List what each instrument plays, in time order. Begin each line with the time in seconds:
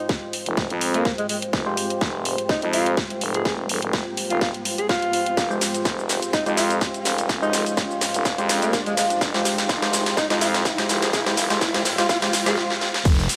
Already playing: analog synth pad G#3 F4 G4 C5, ambient pad F4 C5 G5, riser
0.09 kick, snare
0.33 open hi-hat
0.46 fm bass F1, closed hi-hat
0.57 kick, snare
0.70 fm bass F2, closed hi-hat
0.81 open hi-hat
0.94 alto saxophone A#3, closed hi-hat
1.05 kick, snare
1.18 alto saxophone G#3, closed hi-hat
1.29 alto saxophone G#3, open hi-hat
1.42 closed hi-hat
1.53 fm bass F1, kick, snare
1.66 synth stab G#3 F4 G4 C5
1.77 open hi-hat
1.90 closed hi-hat
2.01 fm bass F1, kick, snare
2.25 open hi-hat
2.38 closed hi-hat
2.49 alto saxophone D#4, kick, snare
2.62 fm bass F2, alto saxophone D#4, closed hi-hat
2.73 alto saxophone F4, open hi-hat
2.86 closed hi-hat
2.97 kick, snare
3.10 closed hi-hat
3.21 fm bass F1, open hi-hat
3.34 alto saxophone G#4, closed hi-hat
3.45 fm bass F1, alto saxophone G#4, kick, snare
3.69 fm bass F1, open hi-hat
3.82 fm bass F1, closed hi-hat
3.93 kick, snare
4.17 open hi-hat
4.30 fm bass F1, alto saxophone F4, closed hi-hat
4.41 alto saxophone F4, kick, snare
4.54 closed hi-hat
4.65 open hi-hat
4.78 alto saxophone G#4, closed hi-hat
4.89 alto saxophone F4, kick, snare
5.02 closed hi-hat
5.13 open hi-hat
5.26 closed hi-hat
5.37 fm bass F1, analog synth pad F5, kick, snare, cabasa
5.50 synth stab G#3 F4 G4 C5, cabasa
5.61 snare, open hi-hat, cabasa
5.74 closed hi-hat, cabasa
5.85 fm bass F1, kick, snare, cabasa
5.99 cabasa
6.09 snare, open hi-hat, cabasa
6.22 closed hi-hat, cabasa
6.33 alto saxophone D#4, kick, snare, cabasa
6.46 fm bass F2, synth stab G#3 F4 G4 C5, alto saxophone D#4, closed hi-hat, cabasa
6.57 alto saxophone F4, snare, open hi-hat, cabasa
6.70 closed hi-hat, cabasa
6.81 kick, snare, cabasa
6.94 closed hi-hat, cabasa
7.05 fm bass F1, snare, open hi-hat, cabasa
7.18 closed hi-hat, cabasa
7.29 fm bass F1, kick, snare, cabasa
7.42 synth stab G#3 F4 G4 C5, alto saxophone D#4, cabasa
7.53 fm bass F1, snare, open hi-hat, cabasa
7.66 closed hi-hat, cabasa
7.77 kick, snare, cabasa
7.91 cabasa
8.01 snare, open hi-hat, cabasa
8.14 fm bass F1, closed hi-hat, cabasa
8.25 kick, snare, cabasa
8.38 fm bass F2, synth stab G#3 F4 G4 C5, closed hi-hat, cabasa
8.49 snare, open hi-hat, cabasa
8.62 alto saxophone A#3, closed hi-hat, cabasa
8.73 kick, snare, cabasa
8.86 alto saxophone G#3, closed hi-hat, cabasa
8.97 alto saxophone G#3, snare, open hi-hat, cabasa
9.10 closed hi-hat, cabasa
9.21 fm bass F1, kick, snare, cabasa
9.34 synth stab G#3 F4 G4 C5, snare, cabasa
9.45 snare, open hi-hat, cabasa
9.58 snare, closed hi-hat, cabasa
9.69 fm bass F1, kick, snare, cabasa
9.82 synth stab G#3 F4 G4 C5, snare, cabasa
9.93 snare, open hi-hat, cabasa
10.06 snare, closed hi-hat, cabasa
10.17 alto saxophone D#4, kick, snare, cabasa
10.30 fm bass F2, synth stab G#3 F4 G4 C5, alto saxophone D#4, snare, closed hi-hat, cabasa
10.41 alto saxophone F4, snare, open hi-hat, cabasa
10.54 snare, closed hi-hat, cabasa
10.65 kick, snare, cabasa
10.78 synth stab G#3 F4 G4 C5, snare, closed hi-hat, cabasa
10.89 fm bass F1, snare, open hi-hat, cabasa
11.02 alto saxophone G#4, snare, closed hi-hat, cabasa
11.13 fm bass F1, alto saxophone G#4, kick, snare, cabasa
11.26 synth stab G#3 F4 G4 C5, snare, cabasa
11.37 fm bass F1, snare, open hi-hat, cabasa
11.50 fm bass F1, synth stab G#3 F4 G4 C5, snare, closed hi-hat, cabasa
11.61 kick, snare, cabasa
11.74 synth stab G#3 F4 G4 C5, snare, closed hi-hat, cabasa
11.85 snare, open hi-hat, cabasa
11.98 synth stab G#3 F4 G4 C5, alto saxophone F4, snare, closed hi-hat, cabasa
12.09 alto saxophone F4, kick, snare, swell, cabasa
12.22 synth stab G#3 F4 G4 C5, snare, closed hi-hat, cabasa
12.33 snare, open hi-hat, cabasa
12.46 fm bass F1, synth stab G#3 F4 G4 C5, alto saxophone G#4, snare, closed hi-hat, cabasa
12.57 snare
12.70 snare
12.81 snare
12.94 snare
13.05 fm bass F1, analog synth pad G#3 F4 G4 C5, ambient pad F4, kick, closed hi-hat, crash, downlifter, cabasa
13.19 snare, cabasa
13.29 closed hi-hat, open hi-hat, cabasa